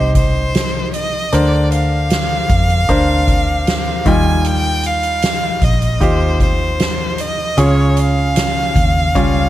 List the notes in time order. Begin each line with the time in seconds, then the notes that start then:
Already playing: C2 C3 D#4 G4 C5 D#5
0.15 C5, kick, closed hi-hat
0.55 snare, closed hi-hat
0.94 D#5, closed hi-hat
1.32 D2 D3 D4 A#4 C5 D5, closed hi-hat
1.72 F5, closed hi-hat
2.10 snare, closed hi-hat
2.49 F2, kick, closed hi-hat
2.70 closed hi-hat
2.89 D2 D4 A#4 C5, kick, closed hi-hat
3.28 kick, closed hi-hat
3.67 snare, closed hi-hat
4.05 D#2 D#3 G3 D#4 F4 G#5, kick, closed hi-hat
4.44 G5, closed hi-hat
4.83 F5, closed hi-hat
5.03 closed hi-hat
5.22 snare, closed hi-hat
5.62 A#1 D#5, kick, closed hi-hat
5.82 closed hi-hat
6.00 D#2 D#4 F4 G4 C5, kick, closed hi-hat
6.40 C5, kick, closed hi-hat
6.80 snare, closed hi-hat
7.18 D#5, closed hi-hat
7.57 C#2 C#3 C#4 F4 G#4 C#5, closed hi-hat
7.97 F5, closed hi-hat
8.36 snare, closed hi-hat
8.76 D#2, kick, closed hi-hat
9.15 C#2 G3 C#4 F4, kick, closed hi-hat